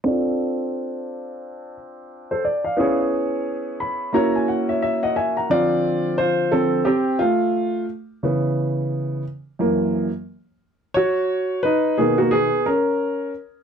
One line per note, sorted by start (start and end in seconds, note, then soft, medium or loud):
0.04 2.73 C4 medium
0.04 2.74 D4 medium
0.04 2.74 F4 medium
0.04 1.73 A4 medium
0.04 1.73 D5 medium
2.31 2.44 A4 medium
2.31 2.43 C5 medium
2.45 2.63 D5 medium
2.64 2.97 D5 soft
2.64 2.97 F5 medium
2.77 4.11 B3 medium
2.77 4.11 C#4 medium
2.77 4.12 E4 medium
2.77 4.12 G#4 medium
2.77 4.13 C#5 medium
3.80 4.12 B5 medium
4.13 5.47 A#3 medium
4.13 5.47 C#4 medium
4.13 5.48 E4 medium
4.13 5.48 F#4 medium
4.13 4.48 C#5 medium
4.13 4.33 A#5 medium
4.35 4.48 G#5 medium
4.48 4.67 F#5 medium
4.69 5.02 C#5 soft
4.69 4.81 E5 medium
4.82 5.01 E5 medium
5.03 5.16 D#5 medium
5.03 5.16 F#5 medium
5.16 5.36 E5 medium
5.16 5.36 G#5 medium
5.37 5.70 F#5 soft
5.37 5.69 A#5 medium
5.50 6.51 D3 soft
5.50 6.51 F3 soft
5.50 6.52 C4 medium
5.50 6.15 F4 medium
5.50 6.21 D5 loud
6.18 6.51 F4 medium
6.18 6.53 C5 medium
6.52 6.83 D3 soft
6.52 6.83 F3 soft
6.52 6.85 C4 medium
6.52 6.87 A4 medium
6.85 7.18 C4 medium
6.85 7.21 G4 medium
7.19 7.85 A3 medium
7.19 7.84 F4 medium
8.23 9.21 C#3 medium
8.23 9.22 E3 soft
8.23 9.22 B3 medium
9.59 10.07 F#2 medium
9.59 10.08 E3 soft
9.59 10.08 A#3 medium
10.94 11.60 F#4 medium
10.94 11.59 C#5 loud
11.63 11.96 D#4 medium
11.63 11.95 B4 medium
11.98 12.46 B2 medium
11.98 12.47 D#3 soft
11.98 12.18 A#3 medium
11.98 12.18 B3 medium
11.98 12.19 G#4 medium
12.18 12.32 A#3 medium
12.18 12.32 F#4 medium
12.31 12.64 B3 medium
12.31 12.67 G#4 medium
12.66 13.31 C#4 medium
12.66 13.30 A#4 medium